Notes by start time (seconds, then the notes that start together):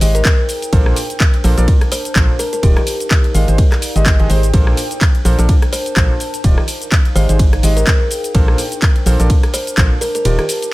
Already playing: D#4
0.01 G#1 G#3 D#4 G4 G#4 D#5, open hi-hat, cabasa
0.08 G#4 C5 G5
0.15 A#4, closed hi-hat, cabasa
0.25 kick, clap, ride, cabasa
0.49 open hi-hat, cabasa
0.62 closed hi-hat, cabasa
0.73 A#1 A#2 D4 A4 A#4 C5, kick, ride, cabasa
0.86 A#4, cross-stick
0.96 open hi-hat, cabasa
1.10 closed hi-hat, cabasa
1.20 kick, clap, ride, cabasa
1.34 closed hi-hat
1.44 A#1 A#2 D4 A4 A#4 C5, open hi-hat, cabasa
1.58 A#1 A#2 D4 A4 A#4 D5 A5, closed hi-hat, cabasa
1.68 kick, ride, cabasa
1.81 cross-stick, closed hi-hat
1.92 C5, open hi-hat, cabasa
2.05 closed hi-hat, cabasa
2.15 A#1 A#2 D4 A4 A#4 C5, kick, clap, ride, cabasa
2.39 A#4, open hi-hat, cabasa
2.53 A#4, closed hi-hat, cabasa
2.63 D#1 D#3 D#4 F4 G4 D5, kick, ride, cabasa
2.77 G4, cross-stick, closed hi-hat
2.87 open hi-hat, cabasa
2.93 G4 D5 F5
3.00 closed hi-hat, cabasa
3.11 kick, clap, ride, cabasa
3.24 closed hi-hat
3.35 G#1 G#3 D#4 G4 G#4 F5, open hi-hat, cabasa
3.48 G#1 G#3 D#4 G4 G#4 C5, closed hi-hat, cabasa
3.54 G#4
3.58 kick, ride, cabasa
3.72 cross-stick, clap, closed hi-hat
3.82 open hi-hat, cabasa
3.87 C5 G5
3.96 G#1 G#3 D#4 G4 G#4 D#5, closed hi-hat, cabasa
4.06 kick, clap, ride, cabasa
4.19 G#1 G#3 D#4 G4 G#4 D#5, closed hi-hat
4.30 G#1 D#4 G4 G#4 C5, open hi-hat, cabasa
4.43 closed hi-hat, cabasa
4.54 A#1 A#2 D4 A4 A#4 C5, kick, ride, cabasa
4.67 cross-stick
4.77 open hi-hat, cabasa
4.91 closed hi-hat, cabasa
5.01 kick, clap, ride, cabasa
5.08 A#4
5.15 closed hi-hat
5.25 A#1 A#2 D4 A4 A#4 C5, open hi-hat, cabasa
5.39 A#1 A#2 D4 A4 A#4 D5 A5, closed hi-hat, cabasa
5.49 kick, ride, cabasa
5.62 cross-stick, closed hi-hat
5.73 C5, open hi-hat, cabasa
5.86 closed hi-hat, cabasa
5.96 A#1 A#2 D4 A4 A#4 C5, kick, clap, ride, cabasa
6.20 open hi-hat, cabasa
6.34 closed hi-hat, cabasa
6.44 D#1 D#3 D#4 F4 G4 D5, kick, ride, cabasa
6.58 cross-stick
6.68 open hi-hat, cabasa
6.77 G4 D5 F5
6.82 closed hi-hat, cabasa
6.92 kick, clap, ride, cabasa
7.05 closed hi-hat
7.15 G#1 G#3 D#4 G4 G#4 C5 F5, open hi-hat, cabasa
7.29 G#1 G#3 D#4 G4 G#4 C5, closed hi-hat, cabasa
7.39 kick, ride, cabasa
7.53 G#4, cross-stick, closed hi-hat
7.63 G#1 G#3 D#4 G4 G#4 C5 D#5, open hi-hat, cabasa
7.70 G5
7.77 A#4, closed hi-hat, cabasa
7.87 kick, clap, ride, cabasa
8.11 open hi-hat, cabasa
8.24 closed hi-hat, cabasa
8.34 A#1 A#2 D4 A4 A#4 C5, kick, ride, cabasa
8.48 A#4, cross-stick
8.58 open hi-hat, cabasa
8.72 closed hi-hat, cabasa
8.82 kick, clap, ride, cabasa
8.96 closed hi-hat
9.06 A#1 A#2 D4 A4 A#4 C5, open hi-hat, cabasa
9.20 A#1 A#2 D4 A4 A#4 D5 A5, closed hi-hat, cabasa
9.30 kick, ride, cabasa
9.43 cross-stick, closed hi-hat
9.54 C5, open hi-hat, cabasa
9.67 closed hi-hat, cabasa
9.77 A#1 A#2 D4 A4 A#4 C5, kick, clap, ride, cabasa
10.01 A#4, open hi-hat, cabasa
10.15 A#4, closed hi-hat, cabasa
10.25 D#1 D#3 D#4 F4 G4 D5, ride, cabasa
10.39 G4 D5, cross-stick, closed hi-hat
10.49 open hi-hat, cabasa
10.58 F5
10.62 closed hi-hat, cabasa